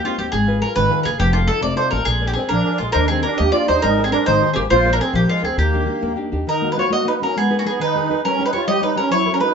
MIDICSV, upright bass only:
0, 0, Header, 1, 2, 480
1, 0, Start_track
1, 0, Key_signature, -3, "major"
1, 0, Tempo, 292826
1, 536, Time_signature, 6, 3, 24, 8
1, 10614, Key_signature, -6, "minor"
1, 15638, End_track
2, 0, Start_track
2, 0, Title_t, "Upright bass"
2, 0, Program_c, 0, 32
2, 299, Note_on_c, 0, 39, 62
2, 453, Note_off_c, 0, 39, 0
2, 540, Note_on_c, 0, 32, 81
2, 1001, Note_off_c, 0, 32, 0
2, 1254, Note_on_c, 0, 32, 87
2, 1406, Note_off_c, 0, 32, 0
2, 1726, Note_on_c, 0, 30, 69
2, 1878, Note_off_c, 0, 30, 0
2, 1960, Note_on_c, 0, 29, 94
2, 2425, Note_off_c, 0, 29, 0
2, 2676, Note_on_c, 0, 29, 81
2, 2831, Note_off_c, 0, 29, 0
2, 3154, Note_on_c, 0, 33, 70
2, 3308, Note_off_c, 0, 33, 0
2, 3378, Note_on_c, 0, 34, 85
2, 3854, Note_off_c, 0, 34, 0
2, 4105, Note_on_c, 0, 34, 75
2, 4269, Note_off_c, 0, 34, 0
2, 4590, Note_on_c, 0, 34, 65
2, 4752, Note_off_c, 0, 34, 0
2, 4838, Note_on_c, 0, 39, 74
2, 5310, Note_off_c, 0, 39, 0
2, 5567, Note_on_c, 0, 39, 77
2, 5725, Note_off_c, 0, 39, 0
2, 6051, Note_on_c, 0, 39, 64
2, 6206, Note_off_c, 0, 39, 0
2, 6291, Note_on_c, 0, 32, 80
2, 6755, Note_off_c, 0, 32, 0
2, 7007, Note_on_c, 0, 32, 89
2, 7162, Note_off_c, 0, 32, 0
2, 7478, Note_on_c, 0, 32, 69
2, 7633, Note_off_c, 0, 32, 0
2, 7719, Note_on_c, 0, 34, 85
2, 8183, Note_off_c, 0, 34, 0
2, 8416, Note_on_c, 0, 34, 88
2, 8578, Note_off_c, 0, 34, 0
2, 8901, Note_on_c, 0, 38, 62
2, 9060, Note_off_c, 0, 38, 0
2, 9141, Note_on_c, 0, 39, 77
2, 9617, Note_off_c, 0, 39, 0
2, 9877, Note_on_c, 0, 39, 83
2, 10038, Note_off_c, 0, 39, 0
2, 10371, Note_on_c, 0, 39, 52
2, 10530, Note_off_c, 0, 39, 0
2, 15638, End_track
0, 0, End_of_file